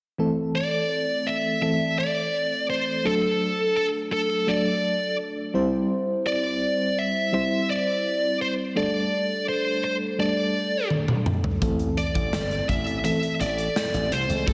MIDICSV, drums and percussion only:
0, 0, Header, 1, 2, 480
1, 0, Start_track
1, 0, Tempo, 714286
1, 128, Time_signature, 4, 2, 24, 8
1, 9764, End_track
2, 0, Start_track
2, 0, Title_t, "Drums"
2, 7327, Note_on_c, 9, 48, 49
2, 7395, Note_off_c, 9, 48, 0
2, 7448, Note_on_c, 9, 47, 57
2, 7515, Note_off_c, 9, 47, 0
2, 7568, Note_on_c, 9, 45, 86
2, 7635, Note_off_c, 9, 45, 0
2, 7688, Note_on_c, 9, 43, 83
2, 7755, Note_off_c, 9, 43, 0
2, 7807, Note_on_c, 9, 36, 108
2, 7807, Note_on_c, 9, 42, 86
2, 7874, Note_off_c, 9, 36, 0
2, 7874, Note_off_c, 9, 42, 0
2, 7925, Note_on_c, 9, 42, 46
2, 7992, Note_off_c, 9, 42, 0
2, 8046, Note_on_c, 9, 42, 71
2, 8114, Note_off_c, 9, 42, 0
2, 8166, Note_on_c, 9, 42, 47
2, 8167, Note_on_c, 9, 36, 87
2, 8233, Note_off_c, 9, 42, 0
2, 8234, Note_off_c, 9, 36, 0
2, 8286, Note_on_c, 9, 38, 108
2, 8353, Note_off_c, 9, 38, 0
2, 8407, Note_on_c, 9, 42, 45
2, 8474, Note_off_c, 9, 42, 0
2, 8527, Note_on_c, 9, 36, 84
2, 8528, Note_on_c, 9, 42, 67
2, 8595, Note_off_c, 9, 36, 0
2, 8595, Note_off_c, 9, 42, 0
2, 8647, Note_on_c, 9, 42, 51
2, 8714, Note_off_c, 9, 42, 0
2, 8766, Note_on_c, 9, 42, 88
2, 8834, Note_off_c, 9, 42, 0
2, 8889, Note_on_c, 9, 42, 45
2, 8957, Note_off_c, 9, 42, 0
2, 9009, Note_on_c, 9, 42, 65
2, 9076, Note_off_c, 9, 42, 0
2, 9128, Note_on_c, 9, 42, 44
2, 9195, Note_off_c, 9, 42, 0
2, 9248, Note_on_c, 9, 38, 90
2, 9315, Note_off_c, 9, 38, 0
2, 9368, Note_on_c, 9, 42, 52
2, 9435, Note_off_c, 9, 42, 0
2, 9489, Note_on_c, 9, 42, 68
2, 9556, Note_off_c, 9, 42, 0
2, 9607, Note_on_c, 9, 42, 43
2, 9674, Note_off_c, 9, 42, 0
2, 9727, Note_on_c, 9, 36, 112
2, 9727, Note_on_c, 9, 42, 86
2, 9764, Note_off_c, 9, 36, 0
2, 9764, Note_off_c, 9, 42, 0
2, 9764, End_track
0, 0, End_of_file